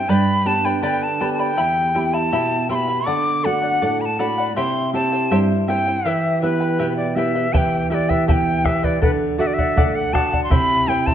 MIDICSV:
0, 0, Header, 1, 5, 480
1, 0, Start_track
1, 0, Key_signature, 1, "minor"
1, 0, Tempo, 745342
1, 54, Time_signature, 2, 2, 24, 8
1, 7177, End_track
2, 0, Start_track
2, 0, Title_t, "Quena"
2, 0, Program_c, 0, 77
2, 0, Note_on_c, 0, 79, 74
2, 60, Note_on_c, 0, 83, 89
2, 70, Note_off_c, 0, 79, 0
2, 302, Note_on_c, 0, 81, 82
2, 311, Note_off_c, 0, 83, 0
2, 419, Note_on_c, 0, 79, 72
2, 429, Note_off_c, 0, 81, 0
2, 537, Note_off_c, 0, 79, 0
2, 544, Note_on_c, 0, 79, 78
2, 663, Note_on_c, 0, 81, 78
2, 673, Note_off_c, 0, 79, 0
2, 851, Note_off_c, 0, 81, 0
2, 855, Note_on_c, 0, 81, 55
2, 905, Note_on_c, 0, 79, 80
2, 914, Note_off_c, 0, 81, 0
2, 1377, Note_on_c, 0, 81, 82
2, 1386, Note_off_c, 0, 79, 0
2, 1736, Note_off_c, 0, 81, 0
2, 1742, Note_on_c, 0, 84, 77
2, 1771, Note_on_c, 0, 83, 83
2, 1777, Note_off_c, 0, 84, 0
2, 1978, Note_on_c, 0, 86, 87
2, 1987, Note_off_c, 0, 83, 0
2, 2221, Note_on_c, 0, 78, 90
2, 2231, Note_off_c, 0, 86, 0
2, 2581, Note_on_c, 0, 83, 72
2, 2591, Note_off_c, 0, 78, 0
2, 2611, Note_on_c, 0, 81, 78
2, 2618, Note_off_c, 0, 83, 0
2, 2704, Note_on_c, 0, 83, 76
2, 2714, Note_off_c, 0, 81, 0
2, 2933, Note_off_c, 0, 83, 0
2, 2937, Note_on_c, 0, 84, 88
2, 3159, Note_off_c, 0, 84, 0
2, 3182, Note_on_c, 0, 81, 83
2, 3463, Note_off_c, 0, 81, 0
2, 3657, Note_on_c, 0, 79, 76
2, 3907, Note_on_c, 0, 76, 73
2, 3917, Note_off_c, 0, 79, 0
2, 4129, Note_off_c, 0, 76, 0
2, 4133, Note_on_c, 0, 71, 75
2, 4469, Note_off_c, 0, 71, 0
2, 4489, Note_on_c, 0, 74, 68
2, 4607, Note_on_c, 0, 76, 70
2, 4616, Note_off_c, 0, 74, 0
2, 4849, Note_on_c, 0, 81, 73
2, 4859, Note_off_c, 0, 76, 0
2, 4876, Note_on_c, 0, 79, 79
2, 4882, Note_off_c, 0, 81, 0
2, 5089, Note_off_c, 0, 79, 0
2, 5093, Note_on_c, 0, 76, 71
2, 5116, Note_on_c, 0, 74, 77
2, 5122, Note_off_c, 0, 76, 0
2, 5213, Note_on_c, 0, 76, 74
2, 5223, Note_off_c, 0, 74, 0
2, 5328, Note_off_c, 0, 76, 0
2, 5332, Note_on_c, 0, 81, 71
2, 5357, Note_on_c, 0, 79, 77
2, 5363, Note_off_c, 0, 81, 0
2, 5571, Note_on_c, 0, 76, 78
2, 5581, Note_off_c, 0, 79, 0
2, 5696, Note_on_c, 0, 74, 68
2, 5705, Note_off_c, 0, 76, 0
2, 5809, Note_off_c, 0, 74, 0
2, 5813, Note_on_c, 0, 71, 73
2, 5867, Note_off_c, 0, 71, 0
2, 6047, Note_on_c, 0, 76, 86
2, 6098, Note_on_c, 0, 74, 66
2, 6107, Note_off_c, 0, 76, 0
2, 6142, Note_on_c, 0, 76, 83
2, 6152, Note_off_c, 0, 74, 0
2, 6410, Note_on_c, 0, 78, 83
2, 6419, Note_off_c, 0, 76, 0
2, 6525, Note_on_c, 0, 81, 81
2, 6534, Note_off_c, 0, 78, 0
2, 6718, Note_off_c, 0, 81, 0
2, 6722, Note_on_c, 0, 84, 66
2, 6770, Note_on_c, 0, 83, 96
2, 6780, Note_off_c, 0, 84, 0
2, 7007, Note_on_c, 0, 79, 84
2, 7017, Note_off_c, 0, 83, 0
2, 7126, Note_on_c, 0, 81, 91
2, 7136, Note_off_c, 0, 79, 0
2, 7177, Note_off_c, 0, 81, 0
2, 7177, End_track
3, 0, Start_track
3, 0, Title_t, "Charango"
3, 0, Program_c, 1, 24
3, 55, Note_on_c, 1, 67, 76
3, 59, Note_on_c, 1, 71, 75
3, 59, Note_on_c, 1, 74, 75
3, 60, Note_on_c, 1, 79, 67
3, 64, Note_on_c, 1, 83, 77
3, 286, Note_off_c, 1, 79, 0
3, 288, Note_off_c, 1, 71, 0
3, 292, Note_off_c, 1, 74, 0
3, 293, Note_off_c, 1, 83, 0
3, 294, Note_on_c, 1, 79, 46
3, 295, Note_off_c, 1, 67, 0
3, 295, Note_on_c, 1, 71, 46
3, 300, Note_on_c, 1, 74, 50
3, 301, Note_on_c, 1, 83, 59
3, 408, Note_off_c, 1, 83, 0
3, 414, Note_off_c, 1, 79, 0
3, 415, Note_off_c, 1, 71, 0
3, 415, Note_off_c, 1, 74, 0
3, 416, Note_on_c, 1, 83, 49
3, 423, Note_on_c, 1, 74, 40
3, 427, Note_on_c, 1, 71, 39
3, 528, Note_off_c, 1, 74, 0
3, 528, Note_off_c, 1, 83, 0
3, 529, Note_off_c, 1, 71, 0
3, 530, Note_on_c, 1, 67, 69
3, 532, Note_on_c, 1, 79, 67
3, 536, Note_on_c, 1, 74, 73
3, 536, Note_on_c, 1, 83, 69
3, 537, Note_on_c, 1, 71, 67
3, 766, Note_off_c, 1, 79, 0
3, 771, Note_off_c, 1, 71, 0
3, 772, Note_off_c, 1, 67, 0
3, 773, Note_off_c, 1, 74, 0
3, 774, Note_on_c, 1, 79, 56
3, 775, Note_off_c, 1, 83, 0
3, 779, Note_on_c, 1, 71, 60
3, 781, Note_on_c, 1, 74, 59
3, 782, Note_on_c, 1, 83, 55
3, 889, Note_off_c, 1, 83, 0
3, 893, Note_off_c, 1, 74, 0
3, 894, Note_off_c, 1, 79, 0
3, 896, Note_on_c, 1, 83, 45
3, 897, Note_off_c, 1, 71, 0
3, 901, Note_on_c, 1, 74, 39
3, 906, Note_on_c, 1, 71, 40
3, 1009, Note_off_c, 1, 83, 0
3, 1011, Note_off_c, 1, 71, 0
3, 1012, Note_on_c, 1, 67, 68
3, 1014, Note_on_c, 1, 64, 75
3, 1015, Note_off_c, 1, 74, 0
3, 1016, Note_on_c, 1, 79, 63
3, 1016, Note_on_c, 1, 83, 80
3, 1017, Note_on_c, 1, 76, 72
3, 1245, Note_off_c, 1, 79, 0
3, 1247, Note_off_c, 1, 64, 0
3, 1252, Note_off_c, 1, 76, 0
3, 1252, Note_on_c, 1, 79, 51
3, 1254, Note_off_c, 1, 67, 0
3, 1254, Note_off_c, 1, 83, 0
3, 1255, Note_on_c, 1, 64, 52
3, 1259, Note_on_c, 1, 76, 51
3, 1262, Note_on_c, 1, 83, 54
3, 1366, Note_off_c, 1, 83, 0
3, 1370, Note_off_c, 1, 76, 0
3, 1374, Note_off_c, 1, 79, 0
3, 1374, Note_on_c, 1, 83, 42
3, 1375, Note_off_c, 1, 64, 0
3, 1378, Note_on_c, 1, 76, 38
3, 1384, Note_on_c, 1, 64, 34
3, 1491, Note_off_c, 1, 76, 0
3, 1492, Note_off_c, 1, 64, 0
3, 1493, Note_off_c, 1, 83, 0
3, 1496, Note_on_c, 1, 79, 74
3, 1497, Note_on_c, 1, 67, 74
3, 1499, Note_on_c, 1, 64, 77
3, 1499, Note_on_c, 1, 76, 73
3, 1500, Note_on_c, 1, 83, 68
3, 1726, Note_off_c, 1, 79, 0
3, 1728, Note_off_c, 1, 64, 0
3, 1730, Note_off_c, 1, 76, 0
3, 1733, Note_on_c, 1, 79, 55
3, 1734, Note_off_c, 1, 83, 0
3, 1735, Note_on_c, 1, 64, 62
3, 1736, Note_off_c, 1, 67, 0
3, 1738, Note_on_c, 1, 76, 56
3, 1742, Note_on_c, 1, 83, 61
3, 1844, Note_off_c, 1, 83, 0
3, 1849, Note_off_c, 1, 76, 0
3, 1851, Note_on_c, 1, 83, 48
3, 1854, Note_off_c, 1, 64, 0
3, 1854, Note_off_c, 1, 79, 0
3, 1857, Note_on_c, 1, 76, 42
3, 1862, Note_on_c, 1, 64, 37
3, 1967, Note_off_c, 1, 64, 0
3, 1970, Note_on_c, 1, 69, 62
3, 1971, Note_off_c, 1, 76, 0
3, 1974, Note_off_c, 1, 83, 0
3, 1974, Note_on_c, 1, 74, 71
3, 1978, Note_on_c, 1, 78, 72
3, 2204, Note_off_c, 1, 69, 0
3, 2209, Note_off_c, 1, 74, 0
3, 2211, Note_on_c, 1, 69, 52
3, 2215, Note_off_c, 1, 78, 0
3, 2218, Note_on_c, 1, 74, 50
3, 2224, Note_on_c, 1, 78, 50
3, 2323, Note_off_c, 1, 78, 0
3, 2331, Note_on_c, 1, 78, 50
3, 2333, Note_off_c, 1, 69, 0
3, 2334, Note_off_c, 1, 74, 0
3, 2342, Note_on_c, 1, 74, 36
3, 2453, Note_off_c, 1, 74, 0
3, 2453, Note_off_c, 1, 78, 0
3, 2459, Note_on_c, 1, 69, 65
3, 2461, Note_on_c, 1, 74, 81
3, 2464, Note_on_c, 1, 78, 69
3, 2691, Note_off_c, 1, 69, 0
3, 2693, Note_off_c, 1, 74, 0
3, 2697, Note_off_c, 1, 78, 0
3, 2698, Note_on_c, 1, 69, 52
3, 2700, Note_on_c, 1, 74, 59
3, 2705, Note_on_c, 1, 78, 62
3, 2812, Note_off_c, 1, 78, 0
3, 2817, Note_off_c, 1, 69, 0
3, 2818, Note_off_c, 1, 74, 0
3, 2820, Note_on_c, 1, 78, 44
3, 2829, Note_on_c, 1, 74, 38
3, 2938, Note_off_c, 1, 78, 0
3, 2939, Note_on_c, 1, 67, 72
3, 2940, Note_on_c, 1, 76, 74
3, 2942, Note_off_c, 1, 74, 0
3, 2942, Note_on_c, 1, 64, 63
3, 2945, Note_on_c, 1, 72, 68
3, 2946, Note_on_c, 1, 79, 73
3, 3171, Note_off_c, 1, 76, 0
3, 3175, Note_off_c, 1, 64, 0
3, 3177, Note_off_c, 1, 72, 0
3, 3178, Note_off_c, 1, 67, 0
3, 3178, Note_off_c, 1, 79, 0
3, 3178, Note_on_c, 1, 76, 50
3, 3183, Note_on_c, 1, 64, 53
3, 3185, Note_on_c, 1, 72, 53
3, 3186, Note_on_c, 1, 79, 58
3, 3290, Note_off_c, 1, 79, 0
3, 3297, Note_off_c, 1, 72, 0
3, 3297, Note_off_c, 1, 76, 0
3, 3298, Note_on_c, 1, 79, 45
3, 3299, Note_off_c, 1, 64, 0
3, 3304, Note_on_c, 1, 72, 44
3, 3308, Note_on_c, 1, 64, 35
3, 3417, Note_off_c, 1, 64, 0
3, 3417, Note_off_c, 1, 72, 0
3, 3417, Note_off_c, 1, 79, 0
3, 3420, Note_on_c, 1, 67, 61
3, 3423, Note_on_c, 1, 76, 75
3, 3424, Note_on_c, 1, 64, 72
3, 3425, Note_on_c, 1, 72, 78
3, 3427, Note_on_c, 1, 79, 81
3, 3651, Note_off_c, 1, 76, 0
3, 3654, Note_off_c, 1, 64, 0
3, 3658, Note_off_c, 1, 67, 0
3, 3659, Note_on_c, 1, 76, 55
3, 3660, Note_off_c, 1, 72, 0
3, 3661, Note_off_c, 1, 79, 0
3, 3662, Note_on_c, 1, 64, 56
3, 3668, Note_on_c, 1, 72, 66
3, 3670, Note_on_c, 1, 79, 62
3, 3772, Note_off_c, 1, 79, 0
3, 3777, Note_off_c, 1, 72, 0
3, 3777, Note_off_c, 1, 76, 0
3, 3779, Note_off_c, 1, 64, 0
3, 3780, Note_on_c, 1, 79, 44
3, 3785, Note_on_c, 1, 72, 42
3, 3790, Note_on_c, 1, 64, 40
3, 3892, Note_off_c, 1, 64, 0
3, 3894, Note_off_c, 1, 79, 0
3, 3898, Note_on_c, 1, 67, 67
3, 3900, Note_off_c, 1, 72, 0
3, 3900, Note_on_c, 1, 64, 70
3, 3901, Note_on_c, 1, 76, 73
3, 3902, Note_on_c, 1, 79, 69
3, 3905, Note_on_c, 1, 71, 68
3, 4127, Note_off_c, 1, 76, 0
3, 4132, Note_off_c, 1, 71, 0
3, 4133, Note_off_c, 1, 64, 0
3, 4135, Note_on_c, 1, 76, 54
3, 4137, Note_off_c, 1, 67, 0
3, 4137, Note_off_c, 1, 79, 0
3, 4140, Note_on_c, 1, 64, 49
3, 4140, Note_on_c, 1, 71, 52
3, 4144, Note_on_c, 1, 79, 49
3, 4245, Note_off_c, 1, 79, 0
3, 4249, Note_off_c, 1, 71, 0
3, 4251, Note_off_c, 1, 64, 0
3, 4253, Note_on_c, 1, 79, 49
3, 4255, Note_off_c, 1, 76, 0
3, 4257, Note_on_c, 1, 71, 37
3, 4259, Note_on_c, 1, 64, 37
3, 4367, Note_off_c, 1, 64, 0
3, 4370, Note_off_c, 1, 71, 0
3, 4371, Note_off_c, 1, 79, 0
3, 4371, Note_on_c, 1, 67, 66
3, 4375, Note_on_c, 1, 64, 64
3, 4376, Note_on_c, 1, 76, 70
3, 4378, Note_on_c, 1, 71, 69
3, 4379, Note_on_c, 1, 79, 71
3, 4606, Note_off_c, 1, 76, 0
3, 4611, Note_off_c, 1, 64, 0
3, 4613, Note_off_c, 1, 67, 0
3, 4614, Note_off_c, 1, 71, 0
3, 4614, Note_on_c, 1, 76, 59
3, 4617, Note_off_c, 1, 79, 0
3, 4618, Note_on_c, 1, 64, 66
3, 4622, Note_on_c, 1, 71, 61
3, 4624, Note_on_c, 1, 79, 65
3, 4728, Note_off_c, 1, 79, 0
3, 4733, Note_off_c, 1, 71, 0
3, 4735, Note_off_c, 1, 76, 0
3, 4736, Note_on_c, 1, 79, 46
3, 4737, Note_off_c, 1, 64, 0
3, 4740, Note_on_c, 1, 71, 44
3, 4744, Note_on_c, 1, 64, 44
3, 4850, Note_off_c, 1, 64, 0
3, 4850, Note_off_c, 1, 71, 0
3, 4850, Note_off_c, 1, 79, 0
3, 4854, Note_on_c, 1, 67, 70
3, 4854, Note_on_c, 1, 76, 68
3, 4857, Note_on_c, 1, 71, 82
3, 4858, Note_on_c, 1, 64, 75
3, 4858, Note_on_c, 1, 79, 84
3, 5081, Note_off_c, 1, 76, 0
3, 5085, Note_off_c, 1, 64, 0
3, 5089, Note_on_c, 1, 76, 52
3, 5091, Note_off_c, 1, 71, 0
3, 5092, Note_off_c, 1, 79, 0
3, 5093, Note_on_c, 1, 64, 59
3, 5095, Note_off_c, 1, 67, 0
3, 5099, Note_on_c, 1, 71, 58
3, 5100, Note_on_c, 1, 79, 57
3, 5202, Note_off_c, 1, 79, 0
3, 5209, Note_off_c, 1, 71, 0
3, 5210, Note_on_c, 1, 79, 50
3, 5212, Note_off_c, 1, 64, 0
3, 5212, Note_off_c, 1, 76, 0
3, 5217, Note_on_c, 1, 71, 41
3, 5220, Note_on_c, 1, 64, 38
3, 5328, Note_off_c, 1, 64, 0
3, 5330, Note_off_c, 1, 71, 0
3, 5332, Note_off_c, 1, 79, 0
3, 5332, Note_on_c, 1, 67, 69
3, 5334, Note_on_c, 1, 76, 66
3, 5336, Note_on_c, 1, 64, 70
3, 5338, Note_on_c, 1, 71, 75
3, 5339, Note_on_c, 1, 79, 71
3, 5563, Note_off_c, 1, 76, 0
3, 5564, Note_off_c, 1, 64, 0
3, 5569, Note_off_c, 1, 71, 0
3, 5570, Note_off_c, 1, 79, 0
3, 5571, Note_on_c, 1, 64, 57
3, 5571, Note_on_c, 1, 76, 55
3, 5573, Note_off_c, 1, 67, 0
3, 5576, Note_on_c, 1, 71, 65
3, 5578, Note_on_c, 1, 79, 56
3, 5679, Note_off_c, 1, 79, 0
3, 5684, Note_off_c, 1, 71, 0
3, 5687, Note_off_c, 1, 64, 0
3, 5687, Note_on_c, 1, 79, 52
3, 5692, Note_on_c, 1, 71, 44
3, 5693, Note_off_c, 1, 76, 0
3, 5695, Note_on_c, 1, 64, 37
3, 5804, Note_off_c, 1, 71, 0
3, 5806, Note_on_c, 1, 69, 71
3, 5811, Note_off_c, 1, 79, 0
3, 5813, Note_on_c, 1, 74, 71
3, 5815, Note_off_c, 1, 64, 0
3, 5815, Note_on_c, 1, 78, 70
3, 6035, Note_off_c, 1, 69, 0
3, 6041, Note_off_c, 1, 74, 0
3, 6043, Note_on_c, 1, 69, 55
3, 6046, Note_off_c, 1, 78, 0
3, 6048, Note_on_c, 1, 74, 48
3, 6053, Note_on_c, 1, 78, 60
3, 6165, Note_off_c, 1, 78, 0
3, 6168, Note_off_c, 1, 69, 0
3, 6171, Note_off_c, 1, 74, 0
3, 6172, Note_on_c, 1, 78, 47
3, 6180, Note_on_c, 1, 74, 37
3, 6287, Note_off_c, 1, 74, 0
3, 6288, Note_off_c, 1, 78, 0
3, 6292, Note_on_c, 1, 69, 66
3, 6294, Note_on_c, 1, 74, 70
3, 6296, Note_on_c, 1, 78, 81
3, 6517, Note_off_c, 1, 69, 0
3, 6523, Note_off_c, 1, 74, 0
3, 6525, Note_on_c, 1, 69, 57
3, 6526, Note_off_c, 1, 78, 0
3, 6531, Note_on_c, 1, 74, 67
3, 6533, Note_on_c, 1, 78, 70
3, 6641, Note_off_c, 1, 78, 0
3, 6648, Note_on_c, 1, 78, 46
3, 6649, Note_off_c, 1, 69, 0
3, 6651, Note_off_c, 1, 74, 0
3, 6659, Note_on_c, 1, 74, 37
3, 6763, Note_on_c, 1, 67, 68
3, 6767, Note_on_c, 1, 76, 71
3, 6768, Note_off_c, 1, 74, 0
3, 6769, Note_off_c, 1, 78, 0
3, 6769, Note_on_c, 1, 64, 75
3, 6771, Note_on_c, 1, 72, 73
3, 6772, Note_on_c, 1, 79, 73
3, 7003, Note_off_c, 1, 76, 0
3, 7005, Note_off_c, 1, 64, 0
3, 7008, Note_off_c, 1, 67, 0
3, 7008, Note_off_c, 1, 72, 0
3, 7011, Note_off_c, 1, 79, 0
3, 7011, Note_on_c, 1, 76, 52
3, 7013, Note_on_c, 1, 64, 53
3, 7016, Note_on_c, 1, 72, 52
3, 7019, Note_on_c, 1, 79, 58
3, 7121, Note_off_c, 1, 79, 0
3, 7123, Note_off_c, 1, 72, 0
3, 7127, Note_off_c, 1, 64, 0
3, 7129, Note_on_c, 1, 79, 45
3, 7131, Note_on_c, 1, 72, 48
3, 7132, Note_off_c, 1, 76, 0
3, 7135, Note_on_c, 1, 64, 36
3, 7177, Note_off_c, 1, 64, 0
3, 7177, Note_off_c, 1, 72, 0
3, 7177, Note_off_c, 1, 79, 0
3, 7177, End_track
4, 0, Start_track
4, 0, Title_t, "Nylon-string guitar"
4, 0, Program_c, 2, 24
4, 57, Note_on_c, 2, 43, 64
4, 288, Note_on_c, 2, 59, 41
4, 293, Note_on_c, 2, 62, 40
4, 297, Note_on_c, 2, 67, 43
4, 522, Note_off_c, 2, 43, 0
4, 535, Note_on_c, 2, 50, 62
4, 675, Note_off_c, 2, 59, 0
4, 678, Note_off_c, 2, 62, 0
4, 680, Note_off_c, 2, 67, 0
4, 776, Note_on_c, 2, 59, 44
4, 779, Note_on_c, 2, 62, 39
4, 780, Note_on_c, 2, 67, 48
4, 968, Note_off_c, 2, 59, 0
4, 969, Note_off_c, 2, 62, 0
4, 970, Note_off_c, 2, 67, 0
4, 1001, Note_off_c, 2, 50, 0
4, 1018, Note_on_c, 2, 40, 61
4, 1255, Note_on_c, 2, 59, 41
4, 1259, Note_on_c, 2, 64, 39
4, 1262, Note_on_c, 2, 67, 43
4, 1482, Note_off_c, 2, 40, 0
4, 1498, Note_on_c, 2, 47, 58
4, 1639, Note_off_c, 2, 59, 0
4, 1642, Note_off_c, 2, 64, 0
4, 1643, Note_off_c, 2, 67, 0
4, 1734, Note_on_c, 2, 59, 45
4, 1739, Note_on_c, 2, 64, 38
4, 1742, Note_on_c, 2, 67, 46
4, 1927, Note_off_c, 2, 59, 0
4, 1930, Note_off_c, 2, 64, 0
4, 1931, Note_off_c, 2, 67, 0
4, 1962, Note_off_c, 2, 47, 0
4, 1980, Note_on_c, 2, 50, 68
4, 2224, Note_on_c, 2, 57, 43
4, 2228, Note_on_c, 2, 62, 37
4, 2228, Note_on_c, 2, 66, 47
4, 2444, Note_off_c, 2, 50, 0
4, 2461, Note_on_c, 2, 45, 58
4, 2605, Note_off_c, 2, 57, 0
4, 2607, Note_off_c, 2, 62, 0
4, 2607, Note_off_c, 2, 66, 0
4, 2699, Note_on_c, 2, 57, 44
4, 2702, Note_on_c, 2, 62, 40
4, 2704, Note_on_c, 2, 66, 51
4, 2890, Note_off_c, 2, 57, 0
4, 2891, Note_off_c, 2, 62, 0
4, 2893, Note_off_c, 2, 66, 0
4, 2924, Note_off_c, 2, 45, 0
4, 2943, Note_on_c, 2, 48, 63
4, 3177, Note_on_c, 2, 60, 45
4, 3181, Note_on_c, 2, 64, 39
4, 3183, Note_on_c, 2, 67, 44
4, 3405, Note_off_c, 2, 48, 0
4, 3418, Note_on_c, 2, 43, 60
4, 3561, Note_off_c, 2, 60, 0
4, 3562, Note_off_c, 2, 64, 0
4, 3564, Note_off_c, 2, 67, 0
4, 3657, Note_on_c, 2, 60, 43
4, 3660, Note_on_c, 2, 64, 37
4, 3663, Note_on_c, 2, 67, 49
4, 3849, Note_off_c, 2, 60, 0
4, 3850, Note_off_c, 2, 64, 0
4, 3852, Note_off_c, 2, 67, 0
4, 3883, Note_off_c, 2, 43, 0
4, 3899, Note_on_c, 2, 52, 63
4, 4139, Note_on_c, 2, 59, 43
4, 4143, Note_on_c, 2, 64, 38
4, 4144, Note_on_c, 2, 67, 45
4, 4363, Note_off_c, 2, 52, 0
4, 4377, Note_on_c, 2, 47, 55
4, 4522, Note_off_c, 2, 59, 0
4, 4523, Note_off_c, 2, 64, 0
4, 4524, Note_off_c, 2, 67, 0
4, 4606, Note_on_c, 2, 59, 42
4, 4609, Note_on_c, 2, 64, 40
4, 4612, Note_on_c, 2, 67, 46
4, 4802, Note_off_c, 2, 59, 0
4, 4804, Note_off_c, 2, 64, 0
4, 4805, Note_off_c, 2, 67, 0
4, 4842, Note_off_c, 2, 47, 0
4, 4852, Note_on_c, 2, 52, 65
4, 5091, Note_on_c, 2, 67, 45
4, 5326, Note_off_c, 2, 67, 0
4, 5331, Note_on_c, 2, 59, 47
4, 5566, Note_off_c, 2, 59, 0
4, 5566, Note_on_c, 2, 67, 49
4, 5787, Note_off_c, 2, 52, 0
4, 5803, Note_off_c, 2, 67, 0
4, 5809, Note_on_c, 2, 50, 68
4, 6044, Note_on_c, 2, 66, 49
4, 6282, Note_off_c, 2, 66, 0
4, 6286, Note_on_c, 2, 57, 49
4, 6523, Note_off_c, 2, 57, 0
4, 6525, Note_on_c, 2, 66, 53
4, 6745, Note_off_c, 2, 50, 0
4, 6762, Note_off_c, 2, 66, 0
4, 6763, Note_on_c, 2, 48, 67
4, 7004, Note_on_c, 2, 64, 53
4, 7177, Note_off_c, 2, 48, 0
4, 7177, Note_off_c, 2, 64, 0
4, 7177, End_track
5, 0, Start_track
5, 0, Title_t, "Bombo"
5, 4859, Note_on_c, 9, 43, 64
5, 4924, Note_off_c, 9, 43, 0
5, 5219, Note_on_c, 9, 43, 47
5, 5283, Note_off_c, 9, 43, 0
5, 5339, Note_on_c, 9, 43, 68
5, 5403, Note_off_c, 9, 43, 0
5, 5574, Note_on_c, 9, 37, 44
5, 5574, Note_on_c, 9, 43, 52
5, 5638, Note_off_c, 9, 37, 0
5, 5638, Note_off_c, 9, 43, 0
5, 5692, Note_on_c, 9, 43, 47
5, 5757, Note_off_c, 9, 43, 0
5, 5814, Note_on_c, 9, 43, 68
5, 5878, Note_off_c, 9, 43, 0
5, 6174, Note_on_c, 9, 43, 49
5, 6238, Note_off_c, 9, 43, 0
5, 6297, Note_on_c, 9, 43, 72
5, 6361, Note_off_c, 9, 43, 0
5, 6537, Note_on_c, 9, 37, 46
5, 6537, Note_on_c, 9, 43, 50
5, 6601, Note_off_c, 9, 37, 0
5, 6601, Note_off_c, 9, 43, 0
5, 6656, Note_on_c, 9, 43, 49
5, 6721, Note_off_c, 9, 43, 0
5, 6771, Note_on_c, 9, 43, 68
5, 6835, Note_off_c, 9, 43, 0
5, 7131, Note_on_c, 9, 43, 54
5, 7177, Note_off_c, 9, 43, 0
5, 7177, End_track
0, 0, End_of_file